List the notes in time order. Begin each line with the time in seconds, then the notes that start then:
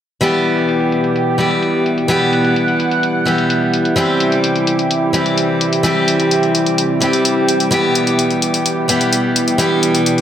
0.21 B2 E3 G3 B3 E4 G4, closed hi-hat
0.45 closed hi-hat
0.57 closed hi-hat
0.69 closed hi-hat
0.80 closed hi-hat
0.92 closed hi-hat
1.04 closed hi-hat
1.16 closed hi-hat
1.38 E3 G3 B3 G4, closed hi-hat
1.51 closed hi-hat
1.63 closed hi-hat
1.86 closed hi-hat
1.98 closed hi-hat
2.08 E3 G3 B3 G4 F#5, closed hi-hat
2.33 closed hi-hat
2.45 closed hi-hat
2.56 closed hi-hat
2.68 closed hi-hat
2.80 closed hi-hat
2.91 closed hi-hat
3.03 closed hi-hat
3.25 E3 G3 B3 G4, closed hi-hat
3.38 closed hi-hat
3.50 closed hi-hat
3.73 closed hi-hat
3.85 closed hi-hat
3.96 C3 E3 G3 C4 G4, closed hi-hat
4.20 closed hi-hat
4.32 closed hi-hat
4.44 closed hi-hat
4.56 closed hi-hat
4.67 closed hi-hat
4.79 closed hi-hat
4.91 closed hi-hat
5.13 E3 G3 C4 G4, closed hi-hat
5.26 closed hi-hat
5.38 closed hi-hat
5.61 closed hi-hat
5.73 closed hi-hat
5.83 E3 G3 C4 G4, closed hi-hat
6.08 closed hi-hat
6.20 closed hi-hat
6.31 closed hi-hat
6.43 closed hi-hat
6.55 closed hi-hat
6.66 closed hi-hat
6.78 closed hi-hat
7.00 E3 G3 C4 G4, closed hi-hat
7.13 closed hi-hat
7.25 closed hi-hat
7.48 closed hi-hat
7.60 closed hi-hat
7.71 B2 E3 G3 B3 G4, closed hi-hat
7.95 closed hi-hat
8.07 closed hi-hat
8.19 closed hi-hat
8.30 closed hi-hat
8.42 closed hi-hat
8.54 closed hi-hat
8.66 closed hi-hat
8.88 E3 G3 B3 G4, closed hi-hat
9.01 closed hi-hat
9.13 closed hi-hat
9.36 closed hi-hat
9.48 closed hi-hat
9.58 E3 G3 B3 D4 G4, closed hi-hat
9.83 closed hi-hat
9.95 closed hi-hat
10.06 closed hi-hat